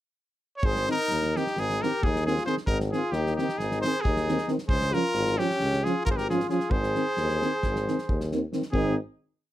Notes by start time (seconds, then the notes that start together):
0.57 C#5
0.62 G#1 G#4 C5, kick
0.76 snare
0.88 D#3 C4 D#4 A#4, snare
1.09 D#2, snare
1.22 snare
1.36 D#3 C4 D#4 G4, snare
1.47 snare
1.55 G#1 D#4, snare
1.59 G#4
1.70 snare
1.82 D#3 C4 G4 A#4, snare
2.02 D#2 G#4, kick
2.07 D#4
2.16 snare
2.26 D#3 C4 F4 G#4, snare
2.38 snare
2.46 D#3 C4 G#4 C5, snare
2.57 snare
2.66 G#1 D#4 A#4, kick
2.80 snare
2.91 D#3 C4 G#4, snare
2.95 F4
3.12 D#2 D#4 G4, snare
3.26 snare
3.36 D#3 C4 G4, snare
3.42 D#4
3.49 snare
3.58 G#1 D#4 G#4, snare
3.71 snare
3.82 D#3 C4 C5, snare
3.86 G#4
4.01 D#2 D#4 G#4, kick
4.16 snare
4.28 D#3 C4, snare
4.38 snare
4.48 D#3 C4, snare
4.58 snare
4.68 C#2 G#4 C5, kick
4.81 snare
4.93 F3 C#4 F4 A#4, snare
5.14 G#1, snare
5.27 snare
5.38 F3 C#4 G4, snare
5.50 snare
5.60 C#2, snare
5.73 snare
5.84 F3 C#4 F4 G#4, snare
6.05 G#1 F4 A#4, kick
6.10 G#4 C5
6.16 G4 A#4, snare
6.30 F3 C#4 F4 G#4, snare
6.40 snare
6.49 F3 C#4 F4 G#4, snare
6.60 snare
6.70 G#1 G#4 C5, kick
6.83 snare
6.95 D#3 C4, snare
7.17 D#2, snare
7.29 snare
7.42 D#3 C4, snare
7.63 G#1, kick, snare
7.76 snare
7.88 D#3 C4, snare
7.98 snare
8.08 D#2, kick
8.20 snare
8.32 D#3 C4, snare
8.53 D#3 C4, snare
8.62 snare
8.72 G#1 D#3 C4 D#4 G#4, kick